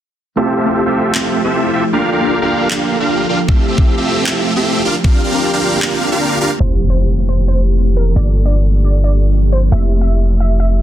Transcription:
0.36 F3 A3 C4 E4 F4 G4 A4 E5
0.56 C4 F4 G4 A4 E5
0.64 A3 C4 E4
0.68 G4
0.86 C4 F4 G4 A4 E5
1.15 C4 F4 G4 A4 E5, clap
1.44 C4 F4 G4 A4 E5
1.73 C4 F4 G4 A4 E5
1.92 A#3 D4 F4 G4 A4 A#4 F5
2.12 D4 F4 G4 A#4 F5
2.20 A#3 D4 F4
2.24 A4
2.42 D4 F4 G4 A#4 F5
2.71 D4 F4 G4 A#4 F5, clap
3.00 D4 F4 G4 A#4 F5
3.29 D4 F4 G4 A#4 F5
3.47 F3 A3 C4 E4 F4 G4 A4 E5, kick
3.68 C4 F4 G4 A4 E5
3.76 A3 C4 E4, kick
3.80 G4
3.97 C4 F4 G4 A4 E5
4.26 C4 F4 G4 A4 E5, clap
4.56 C4 F4 G4 A4 E5
4.85 D3 A#3 D4 F4 G4 A#4 F5
5.03 C4 D4 F4 G4 A#4 F5, kick
5.24 D4 F4 G4 A#4 F5
5.32 C4 D4 F4 G4
5.53 D4 F4 G4 A#4 F5
5.82 D4 F4 G4 A#4 F5, clap
6.12 D4 F4 G4 A#4 F5
6.41 D4 F4 G4 A#4 F5
6.58 F1 E3 A3 C4 E4 G4 C5, closed hi-hat, impact
6.62 G4
6.80 closed hi-hat
6.90 C5
6.99 closed hi-hat
7.09 closed hi-hat
7.14 closed hi-hat
7.19 closed hi-hat
7.22 closed hi-hat
7.25 C5, closed hi-hat
7.38 closed hi-hat
7.48 C5
7.58 closed hi-hat
7.77 closed hi-hat
7.97 A#4, closed hi-hat
8.00 closed hi-hat
8.03 closed hi-hat
8.14 G1 F3 A#3 D4 F4 D5, closed hi-hat
8.18 A4
8.35 closed hi-hat
8.45 D5
8.55 closed hi-hat
8.65 closed hi-hat
8.70 closed hi-hat
8.75 closed hi-hat
8.78 closed hi-hat
8.81 D5, closed hi-hat
8.94 closed hi-hat
9.04 D5
9.13 closed hi-hat
9.33 closed hi-hat
9.52 C5, closed hi-hat
9.56 closed hi-hat
9.59 closed hi-hat
9.70 F1 E3 A3 C4 E4 G4 E5, closed hi-hat
9.91 closed hi-hat
10.01 E5
10.11 closed hi-hat
10.21 closed hi-hat
10.26 closed hi-hat
10.30 closed hi-hat
10.34 closed hi-hat
10.37 E5, closed hi-hat
10.50 closed hi-hat
10.60 E5
10.69 closed hi-hat

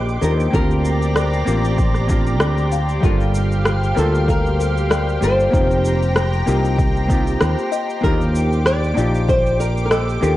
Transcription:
Already playing: A#1 A#3 D4 D#4 F4 G4 C5 D#5 C6 D6
0.09 shaker
0.21 D#2 A#3 D4 D#4 F4 G4 A#4, shaker
0.40 shaker
0.50 D2 A#3 C4 D4 F4 G4 A#4 D5 A#5, kick, shaker
0.55 G4
0.71 shaker
0.85 shaker
1.02 shaker
1.16 D5, cross-stick, shaker
1.33 shaker
1.45 A1 A#3 C4 D4 F4 G4 A#4, shaker
1.64 shaker
1.78 kick, shaker
1.94 cross-stick, shaker
2.07 A#3 C4 D4 F4, kick, shaker
2.12 G4
2.27 shaker
2.40 D2 D5, cross-stick, shaker
2.58 shaker
2.72 F5, shaker
2.89 shaker
3.01 G1 G3 A#3 D4 F4 F5, kick, shaker
3.05 F4 A4
3.21 shaker
3.35 shaker
3.52 shaker
3.65 cross-stick, shaker
3.83 shaker
3.95 D2 G3 A#3 F4 A4 A#4, shaker
4.00 A5
4.15 shaker
4.28 A#4 F5, kick, shaker
4.46 shaker
4.59 A#4, shaker
4.77 shaker
4.90 D5, cross-stick, shaker
5.09 shaker
5.21 G1 G3 A#3 D4 F4 G4 A4 C5, shaker
5.40 shaker
5.51 F1 A#3 C4 D#4 F4 A#5, kick, shaker
5.56 G4
5.71 shaker
5.85 shaker
6.02 shaker
6.16 C5, cross-stick, shaker
6.33 shaker
6.46 C2 A#3 C4 D#4 F4 G4 A#4, shaker
6.65 shaker
6.79 kick, shaker
6.96 shaker
7.08 A#3 C4 D#4 F4, kick, shaker
7.13 G4
7.27 shaker
7.40 D#2 C5, cross-stick, shaker
7.58 shaker
7.72 D#5, shaker
7.90 shaker
8.01 D#2 A#3 D4 D#4 F4 G4 A#4 D6, kick, shaker
8.06 G4
8.21 shaker
8.35 shaker
8.52 shaker
8.66 D5, cross-stick, shaker
8.84 shaker
8.94 A#1 A#3 D4 D#4 D5, shaker
8.98 F4 G4
9.15 shaker
9.28 C5 G5, kick, shaker
9.46 shaker
9.59 A#4 D5, shaker
9.77 shaker
9.85 A#4
9.91 A4 D#5, cross-stick, shaker
10.09 shaker
10.21 D#2 A#3 D4 D#4 F4 G4 A#4, shaker

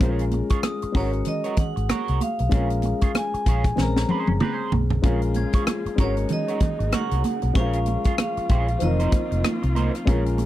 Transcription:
0.00 A#1 G#3 C#4 F4 G#4 A#4 C#5, kick, closed hi-hat, muted conga
0.19 closed hi-hat
0.31 muted clean electric guitar stroke, closed hi-hat, muted conga
0.49 F4 G#4 C#5, kick, closed hi-hat
0.63 D#6, cross-stick, closed hi-hat, high conga
0.82 muted clean electric guitar stroke, muted fingered electric bass stroke, closed hi-hat
0.92 G#1 G#3 C#4 F#4 A#4, kick, open hi-hat
0.96 F#4 A#4 C#5
1.13 muted clean electric guitar stroke, closed hi-hat
1.25 D#5, muted clean electric guitar stroke, closed hi-hat, low conga
1.44 F#4 A#4 C#5, closed hi-hat
1.57 F#5, muted fingered electric bass stroke, kick, closed hi-hat, low conga
1.76 G#1, muted clean electric guitar stroke, closed hi-hat
1.89 F#4 A#4 C#5, cross-stick, closed hi-hat, high conga
2.08 C2, closed hi-hat
2.20 F5, muted clean electric guitar stroke, closed hi-hat, high conga
2.39 B1, muted clean electric guitar stroke, closed hi-hat
2.49 A#1 G#3 C#4 F4, kick, closed hi-hat, muted conga
2.53 G#4 A#4 C#5
2.70 closed hi-hat
2.82 muted clean electric guitar stroke, closed hi-hat, muted conga
3.01 F4 G#4 C#5, kick, closed hi-hat
3.15 G#5, muted clean electric guitar stroke, cross-stick, closed hi-hat, high conga
3.34 muted clean electric guitar stroke, muted fingered electric bass stroke, closed hi-hat
3.46 A#1 F4 G#4 C#5, kick, closed hi-hat
3.64 kick, closed hi-hat
3.76 A#1 G#3 C4 A#5, muted clean electric guitar stroke, snare, low conga
3.80 C#4 A#4
3.96 muted clean electric guitar stroke, snare
4.09 C#4 G#4 C5, muted fingered electric bass stroke, high tom, muted conga
4.27 F#1, muted clean electric guitar stroke, high tom
4.40 C4 G4 B4, mid tom, high conga
4.53 C#4 G#4 C5
4.72 B1, muted clean electric guitar stroke, floor tom, high conga
4.90 muted clean electric guitar stroke, floor tom
5.02 A#1 C#3 F3 G#3 A#3 C#4 F4 G#4 A#4 C#5, kick, closed hi-hat, muted conga
5.22 closed hi-hat
5.34 G#6, muted clean electric guitar stroke, closed hi-hat, muted conga
5.53 F4 G#4 C#5, kick, closed hi-hat
5.67 muted clean electric guitar stroke, cross-stick, closed hi-hat, high conga
5.86 muted fingered electric bass stroke, muted clean electric guitar stroke, closed hi-hat
5.96 G#1 C#3 F#3 G#3 C#4 D#4 F#4 A#4, kick, cross-stick, closed hi-hat
6.00 F#4 A#4 C#5
6.17 closed hi-hat
6.29 D#5, muted clean electric guitar stroke, closed hi-hat, low conga
6.48 F#4 A#4 C#5, closed hi-hat
6.60 muted fingered electric bass stroke, muted clean electric guitar stroke, kick, closed hi-hat, muted conga, low conga
6.79 G#1, muted clean electric guitar stroke, closed hi-hat
6.92 F#4 A#4 C#5 F#5, cross-stick, closed hi-hat, high conga
7.11 C2, closed hi-hat
7.24 muted clean electric guitar stroke, closed hi-hat, high conga
7.42 B1, muted clean electric guitar stroke, closed hi-hat
7.53 A#1 F3 G#3 C#4 F4 G#4 C#5 C#6, kick, closed hi-hat, muted conga
7.57 F4 A#4 F5
7.73 closed hi-hat
7.86 muted clean electric guitar stroke, closed hi-hat, muted conga
8.04 F4 G#4 C#5, kick, closed hi-hat
8.18 F5, muted clean electric guitar stroke, cross-stick, closed hi-hat, high conga
8.37 muted fingered electric bass stroke, muted clean electric guitar stroke, closed hi-hat
8.49 A#1 F4 G#4 C#5, kick, closed hi-hat
8.68 muted clean electric guitar stroke, closed hi-hat
8.79 F1 D#3 F3 A#3 C4 D#4, muted clean electric guitar stroke, closed hi-hat, low conga
8.83 A#4 D#5
9.00 D#4 A#4 C5, closed hi-hat
9.12 muted clean electric guitar stroke, muted fingered electric bass stroke, kick, closed hi-hat, muted conga
9.31 F1, muted clean electric guitar stroke, closed hi-hat
9.44 muted fingered electric bass stroke, muted clean electric guitar stroke, cross-stick, closed hi-hat, high conga
9.63 C2, muted clean electric guitar stroke, closed hi-hat
9.75 D#4 A#4 C5, closed hi-hat, high conga
9.94 muted clean electric guitar stroke, cross-stick, closed hi-hat
10.05 A#1 C#3 F3 G#3 C#4 F4 G#4 A#4 C#5, kick, closed hi-hat, muted conga
10.26 closed hi-hat
10.38 muted clean electric guitar stroke, closed hi-hat, muted conga

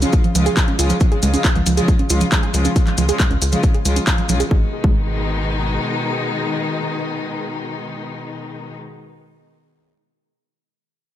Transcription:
0.02 C#3 F3 G#3 C#4 F4, closed hi-hat, maracas
0.12 F4, kick, closed hi-hat, maracas
0.24 F3, closed hi-hat
0.35 C#2 C#3 F3 G#3 F4, closed hi-hat, maracas
0.46 G#4, closed hi-hat, maracas
0.57 C#3 F3 G#3 F4, kick, clap, closed hi-hat, maracas
0.68 C#4, closed hi-hat
0.79 C#2 C#3 F3 G#3 F4, closed hi-hat, maracas
0.90 F3, closed hi-hat, maracas
1.00 C#3 F3 G#3 F4, kick, closed hi-hat, maracas
1.12 C#3 F3 G#3 F4 G#4, closed hi-hat
1.22 C#2 C#3 F3 G#3 F4, closed hi-hat, maracas
1.34 C#3 F3 G#3 C#4 F4, closed hi-hat, maracas
1.45 F4, kick, clap, closed hi-hat, maracas
1.55 C#2 F3, closed hi-hat
1.66 C#2 F3, closed hi-hat, maracas
1.77 C#3 F3 G#3 F4 G#4, closed hi-hat, maracas
1.88 G#3, kick, closed hi-hat, maracas
1.99 C#4, closed hi-hat
2.09 C#2 C#3 F3 G#3 F4, closed hi-hat, maracas
2.21 F3, closed hi-hat, maracas
2.32 C#3 F3 G#3 F4, kick, clap, closed hi-hat, maracas
2.43 G#4, closed hi-hat
2.54 C#2 C#3 F3 G#3 F4, closed hi-hat, maracas
2.65 C#4, closed hi-hat, maracas
2.76 C#3 F3 G#3 F4, kick, closed hi-hat, maracas
2.87 C#3 F3 G#3 F4, clap, closed hi-hat
2.98 C#2 C#3 F3 G#3 F4, closed hi-hat, maracas
3.09 C#3 F3 G#3 F4 G#4, closed hi-hat, maracas
3.19 G#3, kick, clap, closed hi-hat, maracas
3.31 C#2 C#4, closed hi-hat
3.42 C#2 F4, closed hi-hat, maracas
3.52 C#3 F3 G#3 F4, closed hi-hat, maracas
3.63 F3, kick, closed hi-hat, maracas
3.74 G#4, closed hi-hat
3.85 C#2 C#3 F3 G#3 F4, closed hi-hat, maracas
3.96 C#4, closed hi-hat, maracas
4.07 C#3 F3 G#3 F4, kick, clap, closed hi-hat, maracas
4.18 F3, closed hi-hat
4.29 B1 C#3 F3 G#3 F4, closed hi-hat, maracas
4.40 G#4, closed hi-hat, maracas
4.51 G#1 B2 D#3 G#3 D#4, kick
4.84 G#1 G#3, kick

